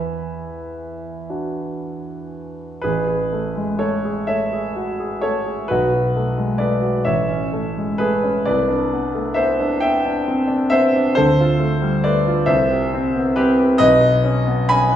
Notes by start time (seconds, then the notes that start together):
Already playing: E2 B4 E5 G#5 B5
1.30 D4 F#4
2.82 A1 G#4 B4
3.07 G#4
3.33 A3
3.56 G#3
3.79 A3 A4 C#5
4.05 G#4
4.27 A3 C#5 E5
4.53 G#4
4.76 F#4
5.00 G#4
5.21 A3 A4 C#5
5.46 G#4
5.68 B1 F#4 B4
5.94 F#4
6.16 A3
6.38 G#3
6.58 A3 B4 D5
6.82 F#4
7.05 A1 C#5 E5
7.29 C#4
7.53 A3
7.77 G#3
7.98 A3 G#4 B4
8.24 C#4
8.45 C2 B4 D5
8.68 D4
8.93 B3
9.14 A3
9.34 B3 C5 E5
9.60 D4
9.80 B3 E5 G5
10.05 D4
10.28 C4
10.47 D4
10.70 B3 C5 E5
10.96 D4
11.15 D2 A4 C5
11.40 F4
11.60 A3
11.81 G3
12.04 A3 B4 D5
12.27 F4
12.46 C2 C5 E5
12.71 G4
12.94 C4
13.15 B3
13.36 C4 G4 B4
13.59 G4
13.78 B1 B4 D#5
14.01 B4
14.24 C#4
14.47 B3
14.69 C#4 G#5 B5
14.92 B4